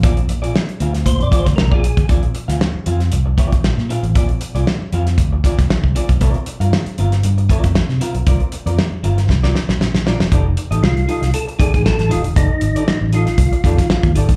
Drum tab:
HH |xxxx-xxxxxxx--xx|xxxx--xxx-xx--xx|xxxx--xxx-xx--xx|xxxx-xxxxxxx--xx|
SD |----o--o---oo---|---oo--o----oo--|----o--o---oo---|----o--o----oo--|
BD |o-------o-oo-o-o|o---------oo----|o-------o-oo-o-o|o---------oo----|

HH |xxxx--xx--------|x-xx-xxxxxxx-xxx|x-xx--xxxxxx-xxx|
SD |----o--ooooooooo|----o--o----oo--|----o--o---oo---|
BD |o-------o-------|o---------oo----|o-------o-oo-o-o|